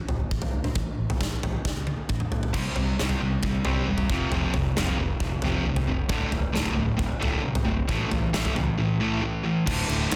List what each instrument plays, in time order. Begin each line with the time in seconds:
0.08 fingered electric bass D1, floor tom
0.31 fingered electric bass A1, kick
0.42 floor tom
0.54 fingered electric bass D2
0.64 mid tom
0.75 fingered electric bass A1, kick, floor tom
0.98 fingered electric bass A1
1.10 floor tom
1.20 fingered electric bass A1, kick, snare
1.43 fingered electric bass A1, floor tom
1.65 fingered electric bass C#2, kick, snare
1.87 high tom
2.09 fingered electric bass A1, kick, mid tom
2.20 mid tom
2.32 fingered electric bass A2, floor tom
2.43 floor tom
2.54 fingered electric bass C2, distorted electric guitar C3 G3 C4, kick, floor tom, crash
2.76 fingered electric bass C2, distorted electric guitar C3 G3, floor tom
2.99 fingered electric bass C2, distorted electric guitar C3 G3 C4, snare
3.09 floor tom
3.21 fingered electric bass C2, distorted electric guitar C3 G3
3.43 fingered electric bass C2, distorted electric guitar C3 G3, kick, floor tom
3.65 fingered electric bass C2, distorted electric guitar C3 G3 C4, floor tom
3.88 fingered electric bass E1, distorted electric guitar C3 G3
3.98 floor tom
4.10 fingered electric bass F1, distorted electric guitar F2 C3 F3, kick
4.32 fingered electric bass F1, distorted electric guitar F2 C3 F3, floor tom
4.54 fingered electric bass F1, distorted electric guitar F2 C3, floor tom
4.76 fingered electric bass F1, distorted electric guitar F2 C3 F3, snare
4.87 floor tom
4.98 fingered electric bass F1, distorted electric guitar F2 C3
5.20 fingered electric bass F1, distorted electric guitar F2 C3, kick, floor tom
5.42 fingered electric bass F1, distorted electric guitar F2 C3 F3, floor tom
5.66 fingered electric bass D2, distorted electric guitar F2 C3
5.76 floor tom
5.87 fingered electric bass F1, distorted electric guitar F2 C3
6.09 fingered electric bass D1, distorted electric guitar D2 A2 D3, kick, floor tom
6.32 fingered electric bass D1, distorted electric guitar D2 A2, floor tom
6.53 fingered electric bass D1, distorted electric guitar D2 A2 D3, snare
6.66 floor tom
6.74 fingered electric bass D1, distorted electric guitar D2 A2
6.97 fingered electric bass D1, distorted electric guitar D2 A2, kick, floor tom
7.20 fingered electric bass D1, distorted electric guitar D2 A2 D3, floor tom
7.41 fingered electric bass C2, distorted electric guitar D2 A2
7.55 floor tom
7.65 fingered electric bass G1, distorted electric guitar D2 A2
7.87 fingered electric bass A1, distorted electric guitar A2 E3 A3, kick, floor tom
8.10 fingered electric bass A1, distorted electric guitar A2 E3, floor tom
8.32 fingered electric bass A1, distorted electric guitar A2 E3 A3, snare
8.45 floor tom
8.55 fingered electric bass C#2, distorted electric guitar A2 E3, mid tom
8.78 distorted electric guitar A2 E3
9.00 distorted electric guitar A2 E3 A3
9.22 distorted electric guitar A2 E3
9.44 distorted electric guitar A2 E3
9.66 fingered electric bass D1, distorted electric guitar D2 A2 D3, kick, crash
9.88 fingered electric bass D1, distorted electric guitar D2 A2 D3, ride
10.11 fingered electric bass D1, distorted electric guitar D2 A2 D3, snare, ride